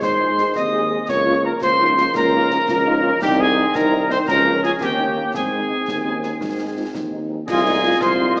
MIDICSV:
0, 0, Header, 1, 9, 480
1, 0, Start_track
1, 0, Key_signature, -4, "major"
1, 0, Tempo, 354820
1, 37, Time_signature, 6, 3, 24, 8
1, 11364, End_track
2, 0, Start_track
2, 0, Title_t, "Piccolo"
2, 0, Program_c, 0, 72
2, 34, Note_on_c, 0, 84, 66
2, 705, Note_off_c, 0, 84, 0
2, 760, Note_on_c, 0, 87, 79
2, 1472, Note_on_c, 0, 85, 82
2, 1493, Note_off_c, 0, 87, 0
2, 1947, Note_off_c, 0, 85, 0
2, 1955, Note_on_c, 0, 82, 68
2, 2036, Note_off_c, 0, 82, 0
2, 2191, Note_on_c, 0, 84, 83
2, 2863, Note_off_c, 0, 84, 0
2, 2921, Note_on_c, 0, 82, 86
2, 4305, Note_off_c, 0, 82, 0
2, 4359, Note_on_c, 0, 79, 95
2, 4440, Note_off_c, 0, 79, 0
2, 4606, Note_on_c, 0, 80, 81
2, 5073, Note_on_c, 0, 82, 89
2, 5093, Note_off_c, 0, 80, 0
2, 5550, Note_off_c, 0, 82, 0
2, 5558, Note_on_c, 0, 84, 84
2, 5639, Note_off_c, 0, 84, 0
2, 5786, Note_on_c, 0, 82, 89
2, 6237, Note_off_c, 0, 82, 0
2, 6288, Note_on_c, 0, 80, 78
2, 6369, Note_off_c, 0, 80, 0
2, 6526, Note_on_c, 0, 79, 76
2, 7191, Note_off_c, 0, 79, 0
2, 7240, Note_on_c, 0, 80, 67
2, 9343, Note_off_c, 0, 80, 0
2, 10123, Note_on_c, 0, 80, 86
2, 10834, Note_on_c, 0, 84, 100
2, 10855, Note_off_c, 0, 80, 0
2, 11299, Note_off_c, 0, 84, 0
2, 11307, Note_on_c, 0, 87, 86
2, 11364, Note_off_c, 0, 87, 0
2, 11364, End_track
3, 0, Start_track
3, 0, Title_t, "Cornet"
3, 0, Program_c, 1, 56
3, 44, Note_on_c, 1, 72, 91
3, 710, Note_off_c, 1, 72, 0
3, 762, Note_on_c, 1, 75, 93
3, 1489, Note_on_c, 1, 73, 88
3, 1509, Note_off_c, 1, 75, 0
3, 1969, Note_on_c, 1, 70, 83
3, 1989, Note_off_c, 1, 73, 0
3, 2200, Note_off_c, 1, 70, 0
3, 2208, Note_on_c, 1, 72, 98
3, 2872, Note_off_c, 1, 72, 0
3, 2935, Note_on_c, 1, 70, 112
3, 4312, Note_off_c, 1, 70, 0
3, 4366, Note_on_c, 1, 67, 114
3, 4602, Note_on_c, 1, 68, 96
3, 4623, Note_off_c, 1, 67, 0
3, 5083, Note_on_c, 1, 70, 110
3, 5103, Note_off_c, 1, 68, 0
3, 5559, Note_off_c, 1, 70, 0
3, 5567, Note_on_c, 1, 72, 109
3, 5672, Note_off_c, 1, 72, 0
3, 5795, Note_on_c, 1, 70, 107
3, 6242, Note_off_c, 1, 70, 0
3, 6274, Note_on_c, 1, 68, 89
3, 6382, Note_off_c, 1, 68, 0
3, 6514, Note_on_c, 1, 67, 99
3, 7184, Note_off_c, 1, 67, 0
3, 7234, Note_on_c, 1, 68, 89
3, 9340, Note_off_c, 1, 68, 0
3, 10114, Note_on_c, 1, 68, 108
3, 10851, Note_on_c, 1, 72, 107
3, 10871, Note_off_c, 1, 68, 0
3, 11322, Note_off_c, 1, 72, 0
3, 11364, End_track
4, 0, Start_track
4, 0, Title_t, "Woodwind section"
4, 0, Program_c, 2, 71
4, 38, Note_on_c, 2, 72, 77
4, 707, Note_off_c, 2, 72, 0
4, 749, Note_on_c, 2, 75, 68
4, 1422, Note_off_c, 2, 75, 0
4, 1469, Note_on_c, 2, 73, 75
4, 1919, Note_off_c, 2, 73, 0
4, 1954, Note_on_c, 2, 70, 69
4, 2062, Note_off_c, 2, 70, 0
4, 2192, Note_on_c, 2, 72, 82
4, 2864, Note_off_c, 2, 72, 0
4, 2906, Note_on_c, 2, 70, 96
4, 4297, Note_off_c, 2, 70, 0
4, 4347, Note_on_c, 2, 67, 103
4, 4592, Note_off_c, 2, 67, 0
4, 4601, Note_on_c, 2, 68, 80
4, 5045, Note_off_c, 2, 68, 0
4, 5069, Note_on_c, 2, 70, 90
4, 5553, Note_off_c, 2, 70, 0
4, 5554, Note_on_c, 2, 72, 90
4, 5778, Note_off_c, 2, 72, 0
4, 5788, Note_on_c, 2, 70, 94
4, 6238, Note_off_c, 2, 70, 0
4, 6274, Note_on_c, 2, 68, 81
4, 6515, Note_off_c, 2, 68, 0
4, 6523, Note_on_c, 2, 67, 70
4, 7189, Note_off_c, 2, 67, 0
4, 7235, Note_on_c, 2, 68, 69
4, 9395, Note_off_c, 2, 68, 0
4, 10114, Note_on_c, 2, 75, 81
4, 10116, Note_on_c, 2, 68, 75
4, 10784, Note_off_c, 2, 75, 0
4, 10785, Note_off_c, 2, 68, 0
4, 10844, Note_on_c, 2, 75, 68
4, 10846, Note_on_c, 2, 68, 72
4, 11364, Note_off_c, 2, 68, 0
4, 11364, Note_off_c, 2, 75, 0
4, 11364, End_track
5, 0, Start_track
5, 0, Title_t, "Euphonium"
5, 0, Program_c, 3, 58
5, 41, Note_on_c, 3, 63, 61
5, 271, Note_off_c, 3, 63, 0
5, 279, Note_on_c, 3, 65, 69
5, 386, Note_off_c, 3, 65, 0
5, 525, Note_on_c, 3, 63, 63
5, 744, Note_off_c, 3, 63, 0
5, 760, Note_on_c, 3, 60, 63
5, 1428, Note_off_c, 3, 60, 0
5, 1482, Note_on_c, 3, 61, 72
5, 2149, Note_off_c, 3, 61, 0
5, 2193, Note_on_c, 3, 65, 72
5, 2302, Note_off_c, 3, 65, 0
5, 2428, Note_on_c, 3, 63, 72
5, 2655, Note_off_c, 3, 63, 0
5, 2669, Note_on_c, 3, 61, 73
5, 2908, Note_on_c, 3, 65, 85
5, 2929, Note_off_c, 3, 61, 0
5, 3146, Note_off_c, 3, 65, 0
5, 3154, Note_on_c, 3, 63, 74
5, 3263, Note_off_c, 3, 63, 0
5, 3390, Note_on_c, 3, 61, 81
5, 3500, Note_off_c, 3, 61, 0
5, 3631, Note_on_c, 3, 65, 85
5, 3740, Note_off_c, 3, 65, 0
5, 3870, Note_on_c, 3, 63, 86
5, 4096, Note_off_c, 3, 63, 0
5, 4104, Note_on_c, 3, 61, 77
5, 4215, Note_off_c, 3, 61, 0
5, 4355, Note_on_c, 3, 63, 86
5, 5025, Note_off_c, 3, 63, 0
5, 5087, Note_on_c, 3, 63, 90
5, 5751, Note_off_c, 3, 63, 0
5, 5808, Note_on_c, 3, 61, 88
5, 6472, Note_off_c, 3, 61, 0
5, 6535, Note_on_c, 3, 60, 76
5, 6639, Note_off_c, 3, 60, 0
5, 6778, Note_on_c, 3, 58, 62
5, 7004, Note_on_c, 3, 61, 67
5, 7024, Note_off_c, 3, 58, 0
5, 7240, Note_off_c, 3, 61, 0
5, 7252, Note_on_c, 3, 60, 55
5, 7870, Note_off_c, 3, 60, 0
5, 7959, Note_on_c, 3, 60, 59
5, 8193, Note_on_c, 3, 61, 61
5, 8213, Note_off_c, 3, 60, 0
5, 8668, Note_on_c, 3, 63, 63
5, 8688, Note_off_c, 3, 61, 0
5, 9146, Note_off_c, 3, 63, 0
5, 9154, Note_on_c, 3, 65, 58
5, 9262, Note_off_c, 3, 65, 0
5, 9400, Note_on_c, 3, 63, 58
5, 10067, Note_off_c, 3, 63, 0
5, 11364, End_track
6, 0, Start_track
6, 0, Title_t, "French horn section"
6, 0, Program_c, 4, 60
6, 275, Note_on_c, 4, 68, 50
6, 276, Note_on_c, 4, 56, 51
6, 277, Note_on_c, 4, 63, 53
6, 362, Note_off_c, 4, 68, 0
6, 363, Note_off_c, 4, 56, 0
6, 363, Note_off_c, 4, 63, 0
6, 511, Note_on_c, 4, 56, 49
6, 513, Note_on_c, 4, 68, 48
6, 514, Note_on_c, 4, 63, 51
6, 598, Note_off_c, 4, 56, 0
6, 600, Note_off_c, 4, 68, 0
6, 601, Note_off_c, 4, 63, 0
6, 983, Note_on_c, 4, 56, 57
6, 983, Note_on_c, 4, 68, 57
6, 985, Note_on_c, 4, 63, 56
6, 1072, Note_off_c, 4, 56, 0
6, 1073, Note_off_c, 4, 68, 0
6, 1074, Note_off_c, 4, 63, 0
6, 1222, Note_on_c, 4, 56, 56
6, 1223, Note_on_c, 4, 63, 56
6, 1228, Note_on_c, 4, 68, 52
6, 1312, Note_off_c, 4, 56, 0
6, 1312, Note_off_c, 4, 63, 0
6, 1316, Note_off_c, 4, 68, 0
6, 1700, Note_on_c, 4, 61, 54
6, 1701, Note_on_c, 4, 65, 57
6, 1702, Note_on_c, 4, 58, 52
6, 1790, Note_off_c, 4, 61, 0
6, 1791, Note_off_c, 4, 65, 0
6, 1792, Note_off_c, 4, 58, 0
6, 1942, Note_on_c, 4, 65, 53
6, 1945, Note_on_c, 4, 58, 53
6, 1945, Note_on_c, 4, 61, 53
6, 2031, Note_off_c, 4, 65, 0
6, 2034, Note_off_c, 4, 58, 0
6, 2034, Note_off_c, 4, 61, 0
6, 2418, Note_on_c, 4, 65, 66
6, 2419, Note_on_c, 4, 58, 57
6, 2424, Note_on_c, 4, 61, 59
6, 2509, Note_off_c, 4, 58, 0
6, 2509, Note_off_c, 4, 65, 0
6, 2513, Note_off_c, 4, 61, 0
6, 2667, Note_on_c, 4, 65, 64
6, 2670, Note_on_c, 4, 61, 64
6, 2672, Note_on_c, 4, 58, 58
6, 2755, Note_off_c, 4, 65, 0
6, 2758, Note_off_c, 4, 61, 0
6, 2759, Note_off_c, 4, 58, 0
6, 3143, Note_on_c, 4, 65, 63
6, 3146, Note_on_c, 4, 61, 60
6, 3147, Note_on_c, 4, 58, 65
6, 3232, Note_off_c, 4, 65, 0
6, 3235, Note_off_c, 4, 58, 0
6, 3235, Note_off_c, 4, 61, 0
6, 3378, Note_on_c, 4, 65, 64
6, 3382, Note_on_c, 4, 58, 56
6, 3384, Note_on_c, 4, 61, 63
6, 3469, Note_off_c, 4, 65, 0
6, 3472, Note_off_c, 4, 58, 0
6, 3473, Note_off_c, 4, 61, 0
6, 3864, Note_on_c, 4, 58, 74
6, 3865, Note_on_c, 4, 61, 74
6, 3867, Note_on_c, 4, 65, 72
6, 3953, Note_off_c, 4, 58, 0
6, 3954, Note_off_c, 4, 61, 0
6, 3955, Note_off_c, 4, 65, 0
6, 4093, Note_on_c, 4, 61, 74
6, 4094, Note_on_c, 4, 58, 77
6, 4096, Note_on_c, 4, 65, 67
6, 4184, Note_off_c, 4, 61, 0
6, 4185, Note_off_c, 4, 58, 0
6, 4187, Note_off_c, 4, 65, 0
6, 4565, Note_on_c, 4, 63, 69
6, 4568, Note_off_c, 4, 63, 0
6, 4568, Note_on_c, 4, 63, 65
6, 4573, Note_on_c, 4, 60, 64
6, 4661, Note_off_c, 4, 63, 0
6, 4665, Note_off_c, 4, 60, 0
6, 4809, Note_on_c, 4, 63, 67
6, 4810, Note_off_c, 4, 63, 0
6, 4810, Note_on_c, 4, 60, 70
6, 4810, Note_on_c, 4, 63, 71
6, 4902, Note_off_c, 4, 60, 0
6, 4902, Note_off_c, 4, 63, 0
6, 5298, Note_on_c, 4, 60, 73
6, 5300, Note_on_c, 4, 63, 74
6, 5302, Note_off_c, 4, 63, 0
6, 5302, Note_on_c, 4, 63, 77
6, 5389, Note_off_c, 4, 60, 0
6, 5392, Note_off_c, 4, 63, 0
6, 5535, Note_on_c, 4, 63, 77
6, 5537, Note_on_c, 4, 60, 74
6, 5538, Note_off_c, 4, 63, 0
6, 5538, Note_on_c, 4, 63, 72
6, 5628, Note_off_c, 4, 60, 0
6, 5629, Note_off_c, 4, 63, 0
6, 6018, Note_on_c, 4, 61, 67
6, 6019, Note_on_c, 4, 58, 64
6, 6023, Note_on_c, 4, 65, 63
6, 6108, Note_off_c, 4, 61, 0
6, 6109, Note_off_c, 4, 58, 0
6, 6112, Note_off_c, 4, 65, 0
6, 6268, Note_on_c, 4, 58, 59
6, 6269, Note_on_c, 4, 65, 64
6, 6272, Note_on_c, 4, 61, 56
6, 6357, Note_off_c, 4, 58, 0
6, 6357, Note_off_c, 4, 65, 0
6, 6359, Note_off_c, 4, 61, 0
6, 6745, Note_on_c, 4, 63, 63
6, 6746, Note_on_c, 4, 61, 62
6, 6749, Note_on_c, 4, 58, 63
6, 6834, Note_off_c, 4, 63, 0
6, 6835, Note_off_c, 4, 61, 0
6, 6837, Note_off_c, 4, 58, 0
6, 6985, Note_on_c, 4, 61, 61
6, 6989, Note_on_c, 4, 58, 63
6, 6990, Note_on_c, 4, 63, 53
6, 7074, Note_off_c, 4, 61, 0
6, 7077, Note_off_c, 4, 58, 0
6, 7078, Note_off_c, 4, 63, 0
6, 7476, Note_on_c, 4, 60, 54
6, 7479, Note_on_c, 4, 63, 51
6, 7483, Note_on_c, 4, 56, 49
6, 7563, Note_off_c, 4, 60, 0
6, 7565, Note_off_c, 4, 63, 0
6, 7568, Note_off_c, 4, 56, 0
6, 7712, Note_on_c, 4, 63, 48
6, 7713, Note_on_c, 4, 60, 45
6, 7718, Note_on_c, 4, 56, 51
6, 7799, Note_off_c, 4, 63, 0
6, 7800, Note_off_c, 4, 60, 0
6, 7804, Note_off_c, 4, 56, 0
6, 8190, Note_on_c, 4, 56, 50
6, 8191, Note_on_c, 4, 63, 52
6, 8193, Note_on_c, 4, 60, 51
6, 8278, Note_off_c, 4, 56, 0
6, 8279, Note_off_c, 4, 63, 0
6, 8280, Note_off_c, 4, 60, 0
6, 8432, Note_on_c, 4, 56, 46
6, 8436, Note_on_c, 4, 63, 44
6, 8437, Note_on_c, 4, 60, 46
6, 8519, Note_off_c, 4, 56, 0
6, 8523, Note_off_c, 4, 60, 0
6, 8523, Note_off_c, 4, 63, 0
6, 8906, Note_on_c, 4, 60, 43
6, 8909, Note_on_c, 4, 63, 39
6, 8912, Note_on_c, 4, 56, 45
6, 8994, Note_off_c, 4, 60, 0
6, 8997, Note_off_c, 4, 63, 0
6, 8999, Note_off_c, 4, 56, 0
6, 9153, Note_on_c, 4, 63, 42
6, 9155, Note_on_c, 4, 56, 43
6, 9155, Note_on_c, 4, 60, 40
6, 9240, Note_off_c, 4, 63, 0
6, 9241, Note_off_c, 4, 60, 0
6, 9242, Note_off_c, 4, 56, 0
6, 9628, Note_on_c, 4, 60, 41
6, 9629, Note_on_c, 4, 56, 42
6, 9629, Note_on_c, 4, 63, 44
6, 9716, Note_off_c, 4, 60, 0
6, 9717, Note_off_c, 4, 56, 0
6, 9717, Note_off_c, 4, 63, 0
6, 9870, Note_on_c, 4, 56, 46
6, 9873, Note_on_c, 4, 60, 47
6, 9873, Note_on_c, 4, 63, 44
6, 9958, Note_off_c, 4, 56, 0
6, 9959, Note_off_c, 4, 63, 0
6, 9960, Note_off_c, 4, 60, 0
6, 10355, Note_on_c, 4, 63, 60
6, 10356, Note_on_c, 4, 60, 63
6, 10358, Note_on_c, 4, 56, 70
6, 10441, Note_off_c, 4, 63, 0
6, 10442, Note_off_c, 4, 60, 0
6, 10444, Note_off_c, 4, 56, 0
6, 10598, Note_on_c, 4, 63, 68
6, 10604, Note_on_c, 4, 56, 62
6, 10604, Note_on_c, 4, 60, 65
6, 10684, Note_off_c, 4, 63, 0
6, 10688, Note_off_c, 4, 56, 0
6, 10688, Note_off_c, 4, 60, 0
6, 11078, Note_on_c, 4, 60, 73
6, 11079, Note_on_c, 4, 63, 75
6, 11085, Note_on_c, 4, 56, 73
6, 11163, Note_off_c, 4, 60, 0
6, 11164, Note_off_c, 4, 63, 0
6, 11169, Note_off_c, 4, 56, 0
6, 11303, Note_on_c, 4, 56, 71
6, 11305, Note_on_c, 4, 63, 66
6, 11309, Note_on_c, 4, 60, 74
6, 11364, Note_off_c, 4, 56, 0
6, 11364, Note_off_c, 4, 60, 0
6, 11364, Note_off_c, 4, 63, 0
6, 11364, End_track
7, 0, Start_track
7, 0, Title_t, "Trombone section"
7, 0, Program_c, 5, 61
7, 0, Note_on_c, 5, 51, 61
7, 0, Note_on_c, 5, 56, 62
7, 1415, Note_off_c, 5, 56, 0
7, 1419, Note_off_c, 5, 51, 0
7, 1470, Note_on_c, 5, 53, 62
7, 1470, Note_on_c, 5, 58, 69
7, 4299, Note_off_c, 5, 58, 0
7, 4353, Note_off_c, 5, 53, 0
7, 4366, Note_on_c, 5, 51, 79
7, 4371, Note_on_c, 5, 60, 74
7, 5750, Note_off_c, 5, 60, 0
7, 5797, Note_on_c, 5, 61, 80
7, 5801, Note_off_c, 5, 51, 0
7, 5801, Note_on_c, 5, 53, 74
7, 6468, Note_off_c, 5, 53, 0
7, 6522, Note_on_c, 5, 51, 64
7, 7221, Note_off_c, 5, 51, 0
7, 7236, Note_off_c, 5, 61, 0
7, 7237, Note_on_c, 5, 51, 60
7, 7245, Note_on_c, 5, 60, 61
7, 9822, Note_off_c, 5, 51, 0
7, 9879, Note_off_c, 5, 60, 0
7, 10112, Note_on_c, 5, 65, 106
7, 10336, Note_off_c, 5, 65, 0
7, 10356, Note_on_c, 5, 63, 86
7, 10595, Note_off_c, 5, 63, 0
7, 10605, Note_on_c, 5, 65, 99
7, 11364, Note_off_c, 5, 65, 0
7, 11364, End_track
8, 0, Start_track
8, 0, Title_t, "Tuba"
8, 0, Program_c, 6, 58
8, 39, Note_on_c, 6, 44, 74
8, 638, Note_off_c, 6, 44, 0
8, 762, Note_on_c, 6, 39, 62
8, 1295, Note_off_c, 6, 39, 0
8, 1474, Note_on_c, 6, 37, 82
8, 2075, Note_off_c, 6, 37, 0
8, 2197, Note_on_c, 6, 37, 70
8, 2796, Note_off_c, 6, 37, 0
8, 2915, Note_on_c, 6, 37, 88
8, 3515, Note_off_c, 6, 37, 0
8, 3637, Note_on_c, 6, 37, 78
8, 4236, Note_off_c, 6, 37, 0
8, 4364, Note_on_c, 6, 36, 95
8, 4960, Note_off_c, 6, 36, 0
8, 5079, Note_on_c, 6, 36, 78
8, 5677, Note_off_c, 6, 36, 0
8, 5801, Note_on_c, 6, 37, 101
8, 6399, Note_off_c, 6, 37, 0
8, 6523, Note_on_c, 6, 39, 72
8, 7119, Note_off_c, 6, 39, 0
8, 7245, Note_on_c, 6, 44, 73
8, 7840, Note_off_c, 6, 44, 0
8, 7966, Note_on_c, 6, 39, 54
8, 8560, Note_off_c, 6, 39, 0
8, 8684, Note_on_c, 6, 44, 65
8, 9280, Note_off_c, 6, 44, 0
8, 9408, Note_on_c, 6, 39, 60
8, 10001, Note_off_c, 6, 39, 0
8, 10123, Note_on_c, 6, 36, 94
8, 10718, Note_off_c, 6, 36, 0
8, 10843, Note_on_c, 6, 36, 80
8, 11364, Note_off_c, 6, 36, 0
8, 11364, End_track
9, 0, Start_track
9, 0, Title_t, "Drums"
9, 30, Note_on_c, 9, 35, 76
9, 30, Note_on_c, 9, 38, 70
9, 165, Note_off_c, 9, 35, 0
9, 165, Note_off_c, 9, 38, 0
9, 513, Note_on_c, 9, 38, 47
9, 649, Note_off_c, 9, 38, 0
9, 750, Note_on_c, 9, 35, 66
9, 750, Note_on_c, 9, 38, 63
9, 885, Note_off_c, 9, 35, 0
9, 885, Note_off_c, 9, 38, 0
9, 1469, Note_on_c, 9, 35, 74
9, 1469, Note_on_c, 9, 38, 72
9, 1604, Note_off_c, 9, 35, 0
9, 1604, Note_off_c, 9, 38, 0
9, 2187, Note_on_c, 9, 35, 71
9, 2187, Note_on_c, 9, 38, 73
9, 2323, Note_off_c, 9, 35, 0
9, 2323, Note_off_c, 9, 38, 0
9, 2671, Note_on_c, 9, 38, 53
9, 2806, Note_off_c, 9, 38, 0
9, 2905, Note_on_c, 9, 35, 82
9, 2905, Note_on_c, 9, 38, 75
9, 3040, Note_off_c, 9, 35, 0
9, 3040, Note_off_c, 9, 38, 0
9, 3386, Note_on_c, 9, 38, 53
9, 3522, Note_off_c, 9, 38, 0
9, 3631, Note_on_c, 9, 35, 70
9, 3631, Note_on_c, 9, 38, 76
9, 3766, Note_off_c, 9, 35, 0
9, 3766, Note_off_c, 9, 38, 0
9, 4355, Note_on_c, 9, 35, 83
9, 4355, Note_on_c, 9, 38, 81
9, 4355, Note_on_c, 9, 49, 30
9, 4491, Note_off_c, 9, 35, 0
9, 4491, Note_off_c, 9, 38, 0
9, 4491, Note_off_c, 9, 49, 0
9, 5072, Note_on_c, 9, 35, 75
9, 5072, Note_on_c, 9, 38, 69
9, 5208, Note_off_c, 9, 35, 0
9, 5208, Note_off_c, 9, 38, 0
9, 5551, Note_on_c, 9, 38, 60
9, 5686, Note_off_c, 9, 38, 0
9, 5793, Note_on_c, 9, 35, 87
9, 5793, Note_on_c, 9, 38, 77
9, 5928, Note_off_c, 9, 35, 0
9, 5928, Note_off_c, 9, 38, 0
9, 6270, Note_on_c, 9, 38, 48
9, 6405, Note_off_c, 9, 38, 0
9, 6504, Note_on_c, 9, 35, 69
9, 6504, Note_on_c, 9, 38, 70
9, 6639, Note_off_c, 9, 35, 0
9, 6639, Note_off_c, 9, 38, 0
9, 7231, Note_on_c, 9, 35, 72
9, 7231, Note_on_c, 9, 38, 69
9, 7367, Note_off_c, 9, 35, 0
9, 7367, Note_off_c, 9, 38, 0
9, 7957, Note_on_c, 9, 35, 64
9, 7957, Note_on_c, 9, 38, 63
9, 8092, Note_off_c, 9, 35, 0
9, 8092, Note_off_c, 9, 38, 0
9, 8429, Note_on_c, 9, 38, 46
9, 8564, Note_off_c, 9, 38, 0
9, 8670, Note_on_c, 9, 35, 71
9, 8670, Note_on_c, 9, 38, 54
9, 8805, Note_off_c, 9, 35, 0
9, 8805, Note_off_c, 9, 38, 0
9, 9395, Note_on_c, 9, 35, 67
9, 9395, Note_on_c, 9, 38, 61
9, 9530, Note_off_c, 9, 35, 0
9, 9530, Note_off_c, 9, 38, 0
9, 10117, Note_on_c, 9, 35, 80
9, 10117, Note_on_c, 9, 38, 64
9, 10117, Note_on_c, 9, 49, 54
9, 10252, Note_off_c, 9, 35, 0
9, 10252, Note_off_c, 9, 38, 0
9, 10252, Note_off_c, 9, 49, 0
9, 10833, Note_on_c, 9, 35, 79
9, 10833, Note_on_c, 9, 38, 69
9, 10969, Note_off_c, 9, 35, 0
9, 10969, Note_off_c, 9, 38, 0
9, 11313, Note_on_c, 9, 38, 58
9, 11364, Note_off_c, 9, 38, 0
9, 11364, End_track
0, 0, End_of_file